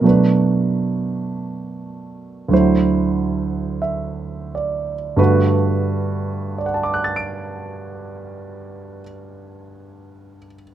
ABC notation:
X:1
M:4/4
L:1/16
Q:"Swing" 1/4=43
K:G
V:1 name="Grand piano"
^A z8 z3 e2 d2- | d z3 [dfad'f'a'd'']12 |]
V:2 name="Grand piano"
[B,,F,A,DB]8 [D,,D,F,Ec]8 | [G,,D,A,FB]16 |]